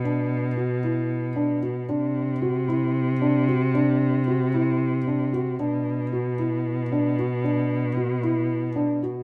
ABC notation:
X:1
M:7/8
L:1/8
Q:1/4=114
K:Bphr
V:1 name="Felt piano"
D2 F E2 D F | D2 F E2 D F | D2 F E2 D F | D2 F E2 D F |
D2 F E2 D F |]
V:2 name="Cello" clef=bass
B,,6- B,, | C,6- C,- | C,6- C, | B,,6- B,,- |
B,,6- B,, |]